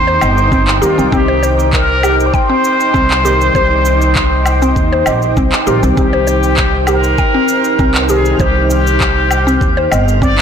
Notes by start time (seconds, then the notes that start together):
Already playing: D#2 D#3 G3 C4 D#4 G4 A#4 C5 G5 D6
0.07 C5
0.21 G1 D#5, low woodblock, shaker
0.38 shaker
0.52 C4, kick, shaker
0.68 clap
0.81 D#2 D#3 G3 C4 F4 G4 A#4, shaker
0.98 C2 C4, shaker
1.11 C2 D#3 G3 C4 G4, kick, shaker
1.28 C5
1.43 C5, shaker
1.59 shaker
1.73 A#4, kick, clap, shaker
2.03 G4, low woodblock, shaker
2.20 shaker
2.26 D5
2.33 C5 G5, kick, shaker
2.50 C4
2.64 shaker
2.80 shaker
2.94 C2 C4, kick, shaker
3.11 clap
3.23 D#3 G3 C4 G4 A#4, shaker
3.41 shaker
3.53 C2 D#3 G3 C4 G4 C5, kick, shaker
3.85 shaker
4.02 shaker
4.15 kick, clap, shaker
4.46 low woodblock, shaker
4.62 C4, shaker
4.76 D#2, kick, shaker
4.93 C5
5.06 A#1 D#5, low woodblock, shaker
5.22 shaker
5.37 C2 C4, kick, shaker
5.52 clap
5.66 A#1 D#3 G3 C4 F4 G4 A#4, shaker
5.83 C2 C4, shaker
5.95 C2 D#3 G3 C4 G4 C5 F6, kick, shaker
6.13 C5
6.27 C5, shaker
6.43 shaker
6.57 kick, clap, shaker
6.87 G4 A#4, low woodblock, shaker
7.04 shaker
7.18 G5, kick, shaker
7.34 C4
7.48 shaker
7.64 shaker
7.79 C2 C4, kick, shaker
7.94 clap
8.09 D#3 G3 C4 G4 G#4 A#4, shaker
8.25 shaker
8.38 C2 D#3 G3 C4 G4 C5, kick, shaker
8.70 G4, shaker
8.87 shaker
9.01 kick, clap, shaker
9.31 low woodblock, shaker
9.47 C4, shaker
9.61 D#2, kick, shaker
9.77 C5
9.91 G1 D#5, low woodblock, shaker
10.08 shaker
10.22 C4 D5, kick, shaker
10.38 clap